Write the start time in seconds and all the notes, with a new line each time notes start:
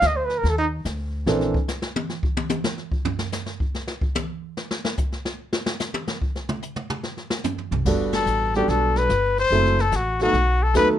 0.01 D2, kick, snare, hi-hat pedal
0.07 D#5
0.16 C5
0.25 B4
0.30 snare
0.38 A#4
0.44 D#2, brush sweep, kick, snare
0.49 A4
0.58 D#4
0.85 D2, kick, snare, hi-hat pedal
1.26 A#1 E3 A#3 C4 D4 A4, snare
1.41 snare
1.54 kick
1.68 snare, hi-hat pedal
1.82 snare
1.96 high tom
2.09 snare
2.23 kick
2.37 high tom
2.49 hi-hat pedal, high tom
2.64 snare
2.78 snare
2.92 kick
3.05 floor tom
3.19 snare
3.32 snare, hi-hat pedal
3.46 snare
3.60 kick
3.74 snare
3.88 snare
4.01 kick
4.15 hi-hat pedal, high tom
4.57 snare
4.71 snare
4.85 snare
4.97 kick, hi-hat pedal
5.12 snare
5.25 snare
5.53 snare
5.66 snare
5.80 snare, hi-hat pedal
5.94 high tom
6.07 snare
6.22 kick
6.36 snare
6.49 mid tom
6.62 hi-hat pedal
6.76 mid tom
6.90 mid tom
7.03 snare
7.17 snare
7.30 snare
7.44 floor tom, hi-hat pedal
7.58 floor tom
7.71 C2, floor tom
7.85 G1 G3 B3 D4 F#4 A4, brush sweep, kick, snare, crash
8.12 A4, snare, ride
8.26 A1, hi-hat pedal
8.54 G3 B3 D4 F#4 G4 A4, snare
8.68 B1 A4, brush sweep, kick, snare
8.96 B4, snare
9.09 G1, kick, snare, hi-hat pedal
9.38 C5, snare
9.50 F#1 F#3 A3 C4 E4 A4, brush sweep, kick, snare
9.66 snare
9.79 A4, snare
9.92 A1, kick, snare, hi-hat pedal
9.96 F#4
10.19 F#3 A3 B3 D#4 F#4 A4, snare
10.33 B1, brush sweep, snare
10.63 A4
10.74 D#2 F#3 A3 B3 D#4 A4 B4, kick, snare, hi-hat pedal